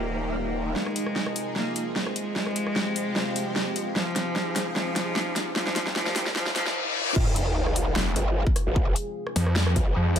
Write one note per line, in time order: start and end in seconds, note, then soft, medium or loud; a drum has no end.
0.00 0.74 D#1 medium
0.00 0.74 D#3 medium
0.00 0.74 G3 medium
0.00 0.68 A#3 loud
0.00 0.74 A#3 medium
0.00 1.40 D#4 medium
0.00 0.74 G4 medium
0.00 0.74 A#4 medium
0.00 1.40 A#4 medium
0.00 1.40 F5 medium
0.00 0.76 G5 medium
0.76 5.52 C3 medium
0.76 5.52 F3 medium
0.76 1.48 G#3 loud
0.76 2.34 G#3 medium
0.76 2.34 D#4 medium
0.76 3.00 F4 medium
0.76 2.34 G#4 medium
0.76 snare soft
0.76 riser medium
0.86 cross-stick soft
0.96 closed hi-hat medium
1.05 6.20 C5 medium
1.05 cross-stick medium
1.16 snare soft
1.25 2.36 G#5 medium
1.25 cross-stick medium
1.36 open hi-hat medium
1.56 1.79 A#3 medium
1.56 snare soft
1.76 closed hi-hat medium
1.96 3.89 G#3 loud
1.96 snare medium
2.06 cross-stick soft
2.16 closed hi-hat medium
2.36 4.60 C4 medium
2.36 3.94 F4 medium
2.36 3.94 G4 medium
2.36 snare medium
2.46 cross-stick soft
2.52 4.60 F5 medium
2.52 closed hi-hat medium
2.60 3.96 G4 medium
2.67 cross-stick soft
2.76 snare medium
2.96 open hi-hat medium
3.16 snare medium
3.36 closed hi-hat medium
3.56 snare medium
3.76 closed hi-hat medium
3.96 4.68 F3 loud
3.96 5.54 G#3 medium
3.96 6.73 D#4 medium
3.96 6.18 F4 medium
3.96 5.54 G#4 medium
3.96 snare medium
4.16 snare medium
4.16 closed hi-hat medium
4.36 snare medium
4.56 snare medium
4.56 open hi-hat medium
4.68 5.56 G#5 medium
4.76 5.49 F3 loud
4.76 snare medium
4.96 snare medium
4.96 closed hi-hat medium
5.16 snare medium
5.36 snare medium
5.36 closed hi-hat medium
5.56 6.75 A#2 medium
5.56 6.75 D#3 medium
5.56 5.94 F3 loud
5.56 6.75 G3 medium
5.56 6.76 D#4 medium
5.56 6.75 G4 medium
5.56 snare medium
5.67 snare medium
5.76 snare medium
5.76 closed hi-hat medium
5.87 snare medium
5.94 6.34 F3 loud
5.94 6.76 A#4 medium
5.94 snare loud
6.00 6.76 F5 medium
6.06 snare medium
6.16 snare loud
6.16 open hi-hat medium
6.26 snare medium
6.36 6.54 F3 loud
6.36 snare loud
6.36 reverse cymbal medium
6.46 snare medium
6.56 6.74 F3 loud
6.56 snare loud
6.56 closed hi-hat medium
6.66 snare loud
7.16 7.95 F1 loud
7.16 10.19 C3 medium
7.16 10.19 F3 medium
7.16 10.19 G#3 medium
7.16 10.19 F4 medium
7.16 10.19 G#4 loud
7.16 kick loud
7.16 crash loud
7.16 sub drop medium
7.36 closed hi-hat medium
7.67 cross-stick medium
7.76 open hi-hat loud
7.96 8.14 F1 loud
7.96 cross-stick medium
7.96 snare loud
8.16 8.45 G1 loud
8.16 closed hi-hat medium
8.47 kick loud
8.56 cross-stick medium
8.56 closed hi-hat medium
8.67 8.95 G#1 medium
8.76 kick loud
8.96 closed hi-hat medium
9.27 cross-stick medium
9.36 9.74 F2 loud
9.36 open hi-hat medium
9.47 cross-stick medium
9.56 snare loud
9.67 cross-stick medium
9.76 9.94 G#1 loud
9.76 kick loud
9.76 closed hi-hat medium
9.96 10.14 F2 loud
10.16 10.19 G#1 loud
10.16 closed hi-hat medium